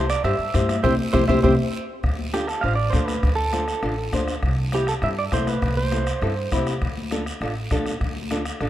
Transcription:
Already playing: C2
0.10 D5, bombo rim, high timbale, short guiro
0.24 G2 E4 G4 C5 E5, bombo rim, high conga, high timbale, long guiro
0.39 G2
0.54 G2 E4 G4 C5, bombo low, bombo rim, high conga, high timbale, short guiro
0.69 bombo rim, high conga, high timbale, short guiro
0.83 C2 E4 G4 C5 E5, bombo low, high conga, high timbale, long guiro
1.13 C2 E4 G4 C5 E5, bombo low, high conga, high timbale, long guiro
1.28 C2 E4 G4 C5 E5, bombo low, high conga, high timbale, long guiro
1.43 C2 E4 G4 C5 E5, bombo low, high conga, high timbale, long guiro
2.03 D2, bombo low, bombo rim, high conga, long guiro
2.19 high conga
2.33 D4 F4 G4 A4, bombo rim, high conga, short guiro
2.47 A4, bombo rim, short guiro
2.61 A1 D4 F4 C5 F5, bombo rim, high conga, long guiro
2.75 D5
2.90 D2 D4 F4 C5, bombo low, bombo rim, high conga, short guiro
2.95 A4
3.06 B4, bombo rim, high conga, short guiro
3.23 D2, bombo low, bombo rim, high conga, long guiro
3.35 A4
3.53 D4 F4 C5, bombo rim, high conga, short guiro
3.68 bombo rim, short guiro
3.83 A1 D4 F4 A4, bombo rim, high conga, long guiro
4.12 D2 D4 F4 C5, bombo low, bombo rim, high conga, short guiro
4.28 bombo rim, short guiro
4.42 C2, bombo low, bombo rim, high conga, long guiro
4.72 C4 E4 G4, bombo rim, high conga, short guiro
4.87 A4, bombo rim, short guiro
5.02 G2 C4 E4 G4 E5, bombo rim, high conga, long guiro
5.19 D5
5.32 C2 C4 E4 A4 C5, bombo low, bombo rim, high conga, short guiro
5.47 B4, bombo rim, high conga, short guiro
5.62 C2, bombo low, bombo rim, high conga, long guiro
5.77 C5, high conga
5.92 C4 E4 A4, bombo rim, high conga, short guiro
6.07 bombo rim, short guiro
6.21 G2 C4 E4 A4, bombo rim, high conga, long guiro
6.52 C2 C4 E4 G4, bombo low, bombo rim, high conga, short guiro
6.67 bombo rim, short guiro
6.81 D2, bombo low, bombo rim, high conga, long guiro
6.97 high conga
7.11 D4 F4 A4, bombo rim, high conga, short guiro
7.26 bombo rim, short guiro
7.41 A1 D4 F4 A4, bombo rim, high conga, long guiro
7.71 D2 D4 F4 A4, bombo low, bombo rim, high conga, short guiro
7.86 bombo rim, high conga, short guiro
8.01 D2, bombo low, bombo rim, high conga, long guiro
8.16 high conga
8.31 D4 F4 A4, bombo rim, high conga, short guiro
8.45 bombo rim, short guiro
8.61 A1 D4 F4 A4, bombo rim, high conga, long guiro

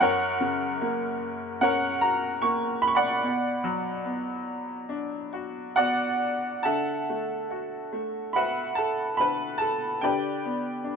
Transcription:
0.00 F#2 A#4 C#5 F#5
0.41 C#3
0.81 A#3
1.61 C#4 A#4 C#5 F#5
2.01 F#4 A#5
2.42 A#3 C#6
2.82 B5
2.88 C#6
2.95 D5 F#5 B5
3.23 B2
3.64 F#3
4.05 B3
4.89 D4
5.33 F#4
5.76 B3 F#4 D5 F#5
6.63 D3 A4 E5 F#5 A5
7.09 A3
7.51 F#4
7.93 A3
8.33 F#4 B4 E5 F#5 B5
8.75 A4 A5
9.17 D3 B4 B5
9.58 A4 A5
10.01 D3 G4 B4 D5 G5
10.45 B3
10.84 D4

